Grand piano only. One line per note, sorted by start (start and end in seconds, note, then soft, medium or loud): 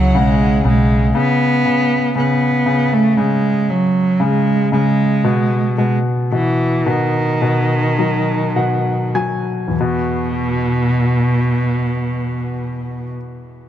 0.00 0.15 C#3 medium
0.15 0.63 C#3 soft
0.64 1.13 C#3 soft
1.15 1.64 C#3 medium
1.65 2.14 C#3 soft
2.15 2.64 C#3 soft
2.66 3.16 C#3 soft
3.17 4.18 C#3 soft
4.20 4.71 C#3 soft
4.72 5.23 C#3 soft
5.24 5.77 B2 soft
5.78 6.31 B2 soft
6.32 6.85 B2 soft
6.86 7.40 B2 soft
7.42 8.54 B2 soft
7.99 9.13 F#3 soft
8.56 9.70 B2 soft
8.56 9.10 F#5 soft
9.15 9.73 F#3 soft
9.15 9.70 G#5 soft
9.68 13.04 E2 soft
9.80 13.17 B2 soft